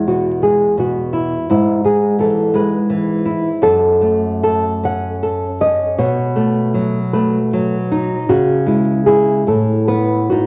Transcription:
0.00 1.45 E2 soft
0.00 0.28 G#3 soft
0.07 0.64 B2 soft
0.07 0.41 F#4 soft
0.42 0.99 G#3 soft
0.42 0.76 G#4 soft
0.77 1.35 B2 soft
0.77 1.46 F#4 soft
1.13 1.49 E4 soft
1.50 3.59 G#2 soft
1.50 1.83 E4 soft
1.84 2.41 G#3 soft
1.84 2.18 G#4 soft
2.19 2.75 E3 soft
2.19 2.53 A4 medium
2.54 3.11 G#3 soft
2.54 3.22 B4 soft
2.90 3.48 E3 soft
3.25 3.63 E4 soft
3.62 5.95 F#2 soft
3.62 4.81 A4 medium
4.01 4.68 A3 soft
4.43 5.08 A4 soft
4.83 5.46 C#4 soft
4.83 5.58 F#5 medium
5.23 5.84 A4 soft
5.61 5.99 C#4 soft
5.61 5.96 D#5 medium
5.98 8.25 B2 medium
5.98 7.10 C#5 medium
6.36 6.98 A3 soft
6.74 7.37 F#3 soft
7.13 7.76 A3 soft
7.13 7.87 B4 medium
7.53 8.14 F#3 soft
7.91 8.29 D#4 soft
7.91 8.27 D#4 medium
8.29 9.44 C#3 medium
8.29 8.65 F#4 medium
8.66 9.05 G#3 soft
8.66 9.05 E4 medium
9.06 9.44 G#3 soft
9.06 9.44 E4 soft
9.06 9.45 G#4 soft
9.47 10.47 A2 soft
9.47 9.86 A4 medium
9.88 10.30 B3 soft
9.88 10.28 B4 medium
10.30 10.47 B3 soft
10.30 10.47 D#4 soft
10.30 10.47 F#4 soft

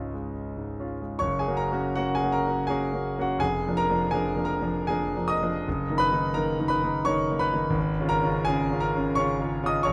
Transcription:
0.00 1.17 C#2 medium
0.00 0.57 G#2 soft
0.00 0.14 G#3 soft
0.00 0.79 C#4 soft
0.00 0.80 F4 soft
0.00 0.31 C#5 medium
0.00 0.34 C#6 medium
0.14 0.84 G#3 soft
0.57 0.93 G#2 soft
0.79 0.99 C#4 soft
0.79 0.99 F4 soft
1.02 1.21 G#3 soft
1.19 1.46 F#1 medium
1.19 1.38 C#5 medium
1.19 1.39 C#6 loud
1.39 1.58 G#4 medium
1.39 1.59 G#5 medium
1.47 1.70 A#3 soft
1.47 1.70 C#4 soft
1.47 1.70 F#4 soft
1.57 1.93 A#4 medium
1.57 1.95 A#5 loud
1.72 1.94 A#3 medium
1.72 1.95 C#4 medium
1.72 1.94 F#4 medium
1.96 2.19 A#3 medium
1.96 2.19 C#4 soft
1.96 2.13 F#4 medium
1.96 2.14 F#5 loud
2.15 2.32 G#4 medium
2.15 2.33 G#5 medium
2.22 2.43 A#3 soft
2.22 2.43 C#4 soft
2.22 2.44 F#4 medium
2.32 2.67 A#4 medium
2.32 2.69 A#5 medium
2.47 2.68 A#3 soft
2.47 2.68 C#4 soft
2.47 2.68 F#4 soft
2.67 2.91 A#3 medium
2.67 2.91 C#4 medium
2.67 2.92 F#4 medium
2.67 3.19 G#4 medium
2.67 3.23 G#5 medium
2.93 3.15 A#3 soft
2.93 3.15 C#4 soft
2.93 3.16 F#4 soft
3.18 3.40 A#3 soft
3.18 3.40 C#4 soft
3.18 3.21 F#4 medium
3.18 3.41 F#5 medium
3.22 3.40 F#4 medium
3.38 3.64 F1 medium
3.38 3.75 G#4 medium
3.38 3.77 G#5 loud
3.67 3.88 F3 medium
3.67 3.88 A#3 soft
3.67 3.89 D4 soft
3.77 4.11 A#4 medium
3.77 4.13 A#5 loud
3.89 4.11 F3 medium
3.89 4.11 A#3 medium
3.89 4.11 D4 medium
4.11 4.34 F3 medium
4.11 4.35 A#3 soft
4.11 4.35 D4 medium
4.11 4.46 G#4 medium
4.11 4.48 G#5 loud
4.36 4.59 F3 medium
4.36 4.59 A#3 soft
4.36 4.59 D4 soft
4.45 4.85 A#4 medium
4.45 4.87 A#5 medium
4.61 4.86 F3 medium
4.61 4.86 A#3 soft
4.61 4.86 D4 medium
4.87 5.14 F3 medium
4.87 5.14 A#3 medium
4.87 5.15 D4 medium
4.87 5.27 G#4 medium
4.87 5.29 G#5 medium
5.16 5.40 F3 soft
5.16 5.40 A#3 soft
5.16 5.40 D4 medium
5.28 5.97 D#5 medium
5.28 6.00 D#6 loud
5.42 5.64 F3 soft
5.42 5.64 A#3 medium
5.42 5.64 D4 medium
5.68 5.89 F#1 medium
5.89 6.10 D#3 medium
5.89 6.11 A#3 medium
5.89 6.11 D#4 medium
5.98 6.33 B4 medium
5.98 6.34 B5 loud
6.12 6.33 D#3 medium
6.12 6.34 A#3 medium
6.12 6.34 D#4 medium
6.34 6.57 D#3 medium
6.34 6.57 A#3 medium
6.34 6.57 D#4 medium
6.34 6.68 A#4 medium
6.34 6.70 A#5 loud
6.59 6.81 D#3 medium
6.59 6.81 A#3 medium
6.59 6.81 D#4 medium
6.68 7.03 B4 medium
6.68 7.05 B5 loud
6.83 7.04 D#3 medium
6.83 7.04 A#3 medium
6.83 7.04 D#4 medium
7.05 7.27 D#3 medium
7.05 7.28 A#3 medium
7.05 7.28 D#4 medium
7.05 7.38 C#5 medium
7.05 7.40 C#6 loud
7.31 7.51 D#3 soft
7.31 7.51 A#3 soft
7.31 7.52 D#4 medium
7.39 8.07 B4 medium
7.39 8.11 B5 loud
7.53 7.74 D#3 medium
7.53 7.74 A#3 medium
7.53 7.74 D#4 medium
7.70 7.96 G#1 medium
8.00 8.21 C#3 medium
8.00 8.22 C#4 medium
8.00 8.22 F4 medium
8.09 8.44 A#4 medium
8.09 8.46 A#5 loud
8.23 8.45 C#3 medium
8.23 8.45 C#4 medium
8.23 8.45 F4 medium
8.45 8.69 C#3 medium
8.45 8.69 C#4 medium
8.45 8.69 F4 medium
8.45 8.80 G#4 medium
8.45 8.81 G#5 loud
8.71 8.92 C#3 medium
8.71 8.92 C#4 soft
8.71 8.93 F4 medium
8.80 9.14 A#4 medium
8.80 9.16 A#5 loud
8.95 9.15 C#3 medium
8.95 9.16 C#4 medium
8.95 9.16 F4 medium
9.15 9.38 C#3 medium
9.15 9.38 C#4 medium
9.15 9.39 F4 medium
9.15 9.64 C#5 medium
9.15 9.67 C#6 loud
9.40 9.60 C#3 soft
9.40 9.61 C#4 soft
9.40 9.61 F4 medium
9.63 9.83 C#3 medium
9.63 9.83 C#4 medium
9.63 9.84 F4 medium
9.63 9.84 D#6 loud
9.68 9.84 D#5 medium
9.83 9.93 A#1 medium
9.83 9.93 C#5 medium
9.83 9.93 C#6 loud

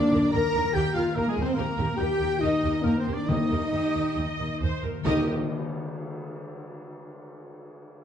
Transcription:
0.00 0.50 D#3 loud
0.00 0.74 D#3 loud
0.00 0.12 A#3 medium
0.00 0.32 D4 loud
0.00 0.33 A#4 medium
0.00 0.31 D5 loud
0.00 0.32 D5 loud
0.00 0.32 D6 loud
0.11 0.19 D#2 medium
0.11 0.94 A#3 medium
0.11 0.21 A#4 medium
0.30 0.41 D#2 medium
0.30 0.74 A#4 loud
0.30 0.41 A#4 medium
0.30 0.74 A#4 loud
0.30 0.72 A#5 loud
0.30 0.74 A#5 loud
0.30 0.75 A#5 loud
0.30 0.76 A#6 loud
0.35 1.15 A#4 medium
0.54 0.62 D#2 medium
0.54 1.35 F4 medium
0.54 0.63 A#4 medium
0.73 0.83 D#2 medium
0.73 1.57 D#3 medium
0.73 0.95 G4 loud
0.73 0.96 G4 loud
0.73 0.84 A#4 medium
0.73 0.94 G5 loud
0.73 0.95 G5 loud
0.73 0.95 G6 loud
0.93 1.04 D#2 medium
0.93 1.78 A#3 medium
0.93 1.15 F4 loud
0.93 1.16 F4 medium
0.93 1.05 A#4 medium
0.93 1.17 F5 loud
0.93 1.15 F5 loud
0.93 1.16 F5 medium
0.93 1.02 F6 medium
1.12 1.27 A#3 loud
1.12 1.28 A#4 loud
1.12 1.29 A#4 loud
1.16 1.24 D#2 medium
1.16 1.30 A#3 loud
1.16 1.99 A#4 medium
1.16 1.25 A#4 medium
1.16 1.30 A#5 loud
1.27 1.42 G#3 loud
1.27 1.35 G#3 medium
1.27 1.33 G#4 loud
1.27 1.35 G#4 medium
1.27 1.44 G#4 loud
1.27 1.44 G#5 medium
1.36 1.45 D#2 medium
1.36 1.59 F4 medium
1.36 1.45 A#4 medium
1.41 1.56 C4 loud
1.41 1.57 C4 loud
1.41 1.56 C5 medium
1.41 1.49 C5 medium
1.41 1.58 C5 loud
1.41 1.59 C6 loud
1.53 1.65 D#2 medium
1.53 1.97 A#3 loud
1.53 1.97 A#4 medium
1.53 2.00 A#5 loud
1.58 3.27 D#3 loud
1.58 1.99 A#3 medium
1.58 1.66 G4 medium
1.58 1.67 A#4 medium
1.58 2.00 A#4 loud
1.78 1.86 D#2 loud
1.78 2.63 A#3 medium
1.78 1.87 G4 medium
1.78 1.86 A#4 medium
1.96 2.07 D#2 medium
1.96 2.39 G4 loud
1.96 2.08 G4 medium
1.96 2.42 G4 loud
1.96 2.08 A#4 medium
1.96 2.84 A#4 medium
1.96 2.40 G5 loud
1.96 2.41 G5 loud
1.96 2.41 G6 loud
2.01 2.42 G5 loud
2.20 2.28 D#2 medium
2.20 3.05 G4 medium
2.20 2.30 G4 medium
2.20 2.30 A#4 medium
2.40 2.50 D#2 medium
2.40 2.84 D#4 loud
2.40 4.16 D#4 medium
2.40 2.51 G4 medium
2.40 2.51 A#4 medium
2.40 2.83 D#5 loud
2.40 2.85 D#5 loud
2.40 2.84 D#6 loud
2.63 2.71 D#2 medium
2.63 3.49 A#3 medium
2.63 2.72 G4 medium
2.63 2.72 A#4 medium
2.83 2.92 D#2 medium
2.83 2.98 A#3 loud
2.83 2.99 A#3 medium
2.83 2.93 G4 medium
2.83 2.98 A#4 loud
2.83 2.99 A#4 medium
2.83 2.93 A#4 medium
2.83 3.72 A#4 medium
2.83 3.00 A#4 medium
2.83 2.99 A#5 medium
2.98 3.13 C4 loud
2.98 3.13 C4 medium
2.98 3.05 C5 medium
2.98 3.15 C5 medium
2.98 3.14 C5 medium
2.98 3.13 C6 medium
3.06 3.14 D#2 medium
3.06 3.93 G4 medium
3.06 3.15 G4 medium
3.06 3.15 A#4 medium
3.13 3.28 D4 medium
3.13 3.30 D5 medium
3.13 3.29 D5 medium
3.13 3.28 D6 medium
3.27 3.36 D#2 medium
3.27 5.00 D#3 medium
3.27 3.91 D#3 loud
3.27 4.58 D#4 loud
3.27 4.62 D#4 medium
3.27 3.36 G4 medium
3.27 3.36 A#4 medium
3.27 4.61 D#5 loud
3.27 4.59 D#5 loud
3.27 4.60 D#6 loud
3.50 3.58 D#2 medium
3.50 4.38 A#3 medium
3.50 3.59 G4 medium
3.50 3.59 A#4 medium
3.72 3.80 D#2 medium
3.72 4.13 G4 medium
3.72 4.61 A#4 medium
3.94 4.02 D#2 medium
3.94 4.82 G4 medium
4.16 4.24 D#2 medium
4.16 5.05 D#4 medium
4.16 4.61 D#5 loud
4.39 4.47 D#2 medium
4.39 5.03 A#3 medium
4.61 4.69 D#2 medium
4.61 5.05 A#4 medium
4.61 4.83 C5 loud
4.83 4.91 D#2 medium
4.83 5.05 G4 medium
4.83 5.05 A#4 medium
5.00 5.31 D#3 medium
5.00 5.31 A#3 medium
5.05 5.31 D#2 loud
5.05 5.31 D#3 loud
5.05 5.27 D#3 loud
5.05 5.24 D#4 loud
5.05 5.31 D#4 medium
5.05 5.31 G4 loud
5.05 5.31 G4 medium
5.05 5.31 A#4 medium
5.05 5.31 A#4 loud
5.05 5.31 D#5 loud
5.05 5.25 D#5 loud
5.05 5.31 D#5 loud
5.05 5.32 D#5 loud
5.05 tam-tam medium
5.11 5.31 G5 medium

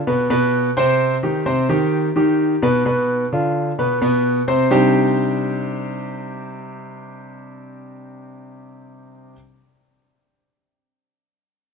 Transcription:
0.07 0.26 B2 medium
0.07 0.26 B3 medium
0.07 0.26 B4 medium
0.30 0.68 B2 medium
0.30 0.68 B3 medium
0.30 0.69 B4 loud
0.77 1.15 C3 medium
0.77 1.15 C4 loud
0.77 1.15 C5 loud
1.23 1.42 D#3 medium
1.23 1.42 D#4 medium
1.23 1.42 G4 medium
1.46 1.65 C3 medium
1.46 1.65 C4 medium
1.46 1.65 C5 medium
1.69 2.07 D#3 medium
1.69 2.08 D#4 medium
1.69 2.08 G4 medium
2.16 2.54 D#3 medium
2.16 2.54 D#4 medium
2.16 2.54 G4 medium
2.62 2.81 B2 medium
2.62 2.82 B3 medium
2.62 2.82 B4 medium
2.85 3.24 B2 medium
2.85 3.24 B3 medium
2.85 3.24 B4 medium
3.33 3.70 D3 medium
3.33 3.70 D4 medium
3.33 3.71 F4 medium
3.78 3.98 B2 medium
3.78 3.98 B3 medium
3.78 3.98 B4 medium
4.01 4.40 B2 medium
4.01 4.40 B3 medium
4.01 4.40 B4 medium
4.48 4.67 C3 medium
4.48 4.67 C4 medium
4.48 4.67 C5 medium
4.70 9.32 C3 medium
4.70 9.32 G3 medium
4.70 9.33 C4 medium
4.70 9.33 D4 medium
4.70 9.33 D#4 medium
4.70 9.33 G4 loud

